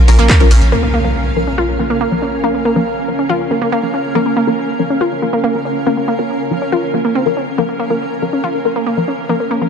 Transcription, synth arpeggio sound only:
0.08 0.12 A#3 medium
0.19 0.25 A#3 loud
0.29 0.34 A#3 loud
0.51 0.53 C#4 medium
0.72 0.77 A#3 loud
0.83 0.87 A#3 medium
0.94 0.98 A#3 loud
1.04 1.09 A#3 medium
1.47 1.54 C#4 medium
1.58 1.62 F4 loud
1.79 1.84 A#3 medium
1.90 1.96 A#3 loud
2.01 2.05 A#3 loud
2.22 2.25 C#4 medium
2.44 2.48 A#3 loud
2.55 2.59 A#3 medium
2.65 2.69 A#3 loud
2.76 2.80 A#3 medium
3.19 3.25 C#4 medium
3.29 3.34 F4 loud
3.51 3.55 A#3 medium
3.62 3.68 A#3 loud
3.72 3.77 A#3 loud
3.94 3.96 C#4 medium
4.15 4.19 A#3 loud
4.26 4.30 A#3 medium
4.37 4.41 A#3 loud
4.47 4.52 A#3 medium
4.90 4.97 C#4 medium
5.01 5.05 F4 loud
5.22 5.27 A#3 medium
5.33 5.39 A#3 loud
5.44 5.48 A#3 loud
5.65 5.68 C#4 medium
5.87 5.91 A#3 loud
5.97 6.02 A#3 medium
6.08 6.12 A#3 loud
6.19 6.23 A#3 medium
6.62 6.68 C#4 medium
6.72 6.77 F4 loud
6.94 6.98 A#3 medium
7.05 7.07 A#3 loud
7.15 7.22 C4 loud
7.37 7.39 C#4 medium
7.58 7.62 A#3 loud
7.69 7.73 A#3 medium
7.80 7.84 A#3 loud
7.90 7.94 A#3 medium
8.33 8.39 C#4 medium
8.44 8.48 F4 loud
8.65 8.69 A#3 medium
8.76 8.82 A#3 loud
8.87 8.91 A#3 loud
9.08 9.11 C#4 medium
9.29 9.34 A#3 loud
9.40 9.44 A#3 medium
9.51 9.55 A#3 loud
9.62 9.66 A#3 medium

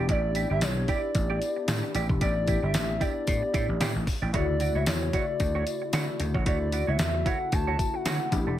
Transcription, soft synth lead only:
0.10 0.48 D5 loud
0.52 0.64 E5 loud
0.63 0.89 C#5 loud
0.90 1.91 D5 loud
2.22 2.60 D5 loud
2.64 3.03 E5 loud
3.02 3.81 D5 loud
4.35 4.78 D5 loud
4.76 4.89 E5 loud
4.88 5.16 C#5 loud
5.14 6.20 D5 loud
6.48 6.91 D5 medium
6.89 7.29 E5 medium
7.27 7.55 F#5 loud
7.54 7.96 A5 loud
7.95 8.33 F#5 loud

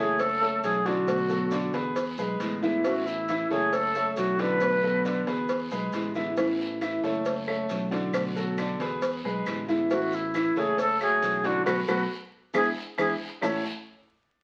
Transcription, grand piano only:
0.00 0.34 A3 medium
0.00 0.34 A4 medium
0.00 0.34 C#5 medium
0.41 0.78 A3 medium
0.41 0.78 A4 medium
0.41 0.78 C#5 medium
0.85 1.22 D3 medium
0.85 1.22 D4 medium
0.85 1.22 D5 medium
1.29 1.48 F#3 medium
1.29 1.48 F#4 medium
1.29 1.48 A4 medium
1.51 1.70 D3 medium
1.51 1.70 D4 medium
1.51 1.70 D5 medium
1.74 2.10 G#4 medium
1.74 2.10 B4 medium
2.18 2.54 G#3 medium
2.18 2.55 G#4 medium
2.18 2.55 B4 medium
2.63 2.81 E3 medium
2.63 2.81 E4 medium
2.63 2.81 E5 medium
2.85 3.21 E3 medium
2.85 3.21 E4 medium
2.85 3.21 E5 medium
3.29 3.47 E3 medium
3.29 3.47 E4 medium
3.29 3.47 E5 medium
3.51 3.87 A3 medium
3.51 3.87 A4 medium
3.51 3.87 C#5 medium
3.95 4.31 A3 medium
3.95 4.31 A4 medium
3.95 4.32 C#5 medium
4.39 4.75 D3 medium
4.39 4.75 D4 medium
4.39 4.76 D5 medium
4.83 5.01 F#3 medium
4.83 5.01 F#4 medium
4.83 5.01 A4 medium
5.05 5.23 D3 medium
5.05 5.23 D4 medium
5.05 5.23 D5 medium
5.27 5.63 G#4 medium
5.27 5.63 B4 medium
5.71 6.08 G#3 medium
5.71 6.08 G#4 medium
5.71 6.08 B4 medium
6.15 6.33 E3 medium
6.15 6.34 E4 medium
6.15 6.34 E5 medium
6.37 6.73 E3 medium
6.37 6.74 E4 medium
6.37 6.74 E5 medium
6.81 7.00 E3 medium
6.81 7.00 E4 medium
6.81 7.00 E5 medium
7.03 7.40 A3 medium
7.03 7.40 A4 medium
7.03 7.40 C#5 medium
7.47 7.84 A3 medium
7.47 7.84 A4 medium
7.47 7.84 C#5 medium
7.91 8.28 D3 medium
7.91 8.28 D4 medium
7.91 8.28 D5 medium
8.36 8.54 F#3 medium
8.36 8.54 F#4 medium
8.36 8.54 A4 medium
8.58 8.76 D3 medium
8.58 8.76 D4 medium
8.58 8.76 D5 medium
8.81 9.17 G#4 medium
8.81 9.17 B4 medium
9.25 9.61 G#3 medium
9.25 9.61 G#4 medium
9.25 9.61 B4 medium
9.69 9.87 E3 medium
9.69 9.87 E4 medium
9.69 9.87 E5 medium
9.91 10.27 E3 medium
9.91 10.27 E4 medium
9.91 10.27 E5 medium
10.34 10.52 E3 medium
10.34 10.53 E4 medium
10.34 10.53 E5 medium
10.57 10.93 A3 medium
10.57 10.93 A4 medium
10.57 10.93 C#5 medium
11.00 11.36 A3 medium
11.00 11.37 F#4 medium
11.00 11.37 C#5 medium
11.44 11.62 D3 medium
11.44 11.63 D4 medium
11.44 11.63 D5 medium
11.66 11.80 F#4 medium
11.66 11.80 A4 medium
11.66 11.80 B4 medium
11.88 12.02 F#4 loud
11.88 12.02 A4 loud
11.88 12.02 B4 loud
12.54 12.68 D4 medium
12.54 12.68 E4 medium
12.54 12.68 G#4 medium
12.98 13.12 D4 medium
12.98 13.12 E4 loud
12.98 13.12 G#4 medium
13.41 13.62 A3 medium
13.41 13.62 E4 medium
13.41 13.63 A4 medium
13.41 13.63 C#5 medium
13.41 13.63 E5 medium
13.41 13.63 A5 loud

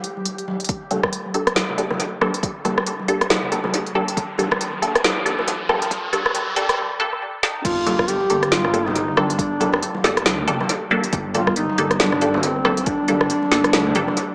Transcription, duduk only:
0.00 0.26 G4 loud
7.43 7.64 D#4 medium
7.65 8.10 F4 loud
8.09 8.54 G4 loud
8.52 8.88 F4 loud
8.87 9.19 D#4 loud
9.17 9.38 D4 medium
9.39 9.79 D4 medium
11.35 11.55 F4 medium
11.56 12.01 D#4 loud
12.00 12.45 D4 medium
12.43 12.88 C4 medium
12.87 14.35 D4 loud

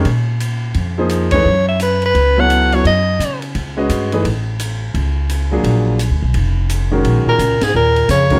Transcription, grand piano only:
0.98 1.30 F3 medium
0.98 1.30 A#3 medium
0.98 1.30 D#4 medium
0.98 1.31 G#4 medium
0.98 1.31 C5 medium
1.33 1.44 E3 medium
1.33 1.44 A3 medium
1.33 1.45 D#4 medium
1.33 1.45 G#4 medium
1.33 1.45 B4 medium
2.37 2.70 F#3 medium
2.37 2.70 B3 medium
2.37 2.70 E4 medium
2.37 2.70 A4 medium
2.37 2.70 C#5 medium
2.74 2.85 F#3 medium
2.74 2.85 B3 medium
2.74 2.85 E4 medium
2.74 2.85 A4 medium
2.74 2.85 C#5 medium
3.77 4.10 G#3 medium
3.77 4.10 C#4 medium
3.77 4.10 F#4 medium
3.77 4.10 B4 medium
3.77 4.10 D#5 medium
4.12 4.24 E3 medium
4.12 4.24 A3 medium
4.12 4.24 D#4 medium
4.12 4.25 G#4 medium
4.12 4.24 B4 medium
5.51 5.97 F#3 medium
5.51 5.97 A#3 medium
5.51 5.97 D4 soft
5.51 5.97 F4 soft
5.51 5.98 G#4 medium
6.91 7.37 D#3 medium
6.91 7.37 G#3 medium
6.91 7.37 C#4 medium
6.91 7.37 F#4 medium
6.91 7.38 A#4 medium
8.31 8.40 D#3 medium
8.31 8.40 G#3 medium
8.31 8.40 C#4 medium
8.31 8.40 F#4 medium
8.31 8.40 A#4 medium

